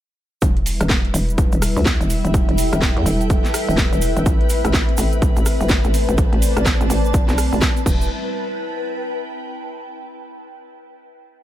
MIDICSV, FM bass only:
0, 0, Header, 1, 2, 480
1, 0, Start_track
1, 0, Key_signature, 1, "minor"
1, 0, Tempo, 480000
1, 420, Time_signature, 4, 2, 24, 8
1, 11431, End_track
2, 0, Start_track
2, 0, Title_t, "FM bass"
2, 0, Program_c, 0, 39
2, 420, Note_on_c, 0, 28, 101
2, 784, Note_off_c, 0, 28, 0
2, 806, Note_on_c, 0, 28, 94
2, 1125, Note_off_c, 0, 28, 0
2, 1139, Note_on_c, 0, 28, 100
2, 1503, Note_off_c, 0, 28, 0
2, 1526, Note_on_c, 0, 28, 100
2, 1743, Note_off_c, 0, 28, 0
2, 1766, Note_on_c, 0, 38, 98
2, 1983, Note_off_c, 0, 38, 0
2, 2006, Note_on_c, 0, 28, 100
2, 2223, Note_off_c, 0, 28, 0
2, 2246, Note_on_c, 0, 28, 100
2, 2463, Note_off_c, 0, 28, 0
2, 2487, Note_on_c, 0, 28, 97
2, 2703, Note_off_c, 0, 28, 0
2, 2726, Note_on_c, 0, 28, 95
2, 2943, Note_off_c, 0, 28, 0
2, 2966, Note_on_c, 0, 40, 98
2, 3045, Note_off_c, 0, 40, 0
2, 3058, Note_on_c, 0, 28, 101
2, 3422, Note_off_c, 0, 28, 0
2, 3686, Note_on_c, 0, 28, 98
2, 3903, Note_off_c, 0, 28, 0
2, 3926, Note_on_c, 0, 28, 98
2, 4143, Note_off_c, 0, 28, 0
2, 4166, Note_on_c, 0, 28, 99
2, 4245, Note_off_c, 0, 28, 0
2, 4260, Note_on_c, 0, 33, 96
2, 4623, Note_off_c, 0, 33, 0
2, 4646, Note_on_c, 0, 33, 93
2, 4965, Note_off_c, 0, 33, 0
2, 4980, Note_on_c, 0, 33, 99
2, 5343, Note_off_c, 0, 33, 0
2, 5366, Note_on_c, 0, 33, 99
2, 5583, Note_off_c, 0, 33, 0
2, 5606, Note_on_c, 0, 31, 99
2, 5823, Note_off_c, 0, 31, 0
2, 5847, Note_on_c, 0, 33, 99
2, 6063, Note_off_c, 0, 33, 0
2, 6087, Note_on_c, 0, 33, 96
2, 6304, Note_off_c, 0, 33, 0
2, 6326, Note_on_c, 0, 33, 97
2, 6543, Note_off_c, 0, 33, 0
2, 6566, Note_on_c, 0, 33, 96
2, 6783, Note_off_c, 0, 33, 0
2, 6807, Note_on_c, 0, 33, 98
2, 6885, Note_off_c, 0, 33, 0
2, 6900, Note_on_c, 0, 33, 99
2, 7263, Note_off_c, 0, 33, 0
2, 7287, Note_on_c, 0, 35, 98
2, 7503, Note_off_c, 0, 35, 0
2, 7527, Note_on_c, 0, 33, 95
2, 7605, Note_off_c, 0, 33, 0
2, 7860, Note_on_c, 0, 28, 98
2, 8083, Note_off_c, 0, 28, 0
2, 11431, End_track
0, 0, End_of_file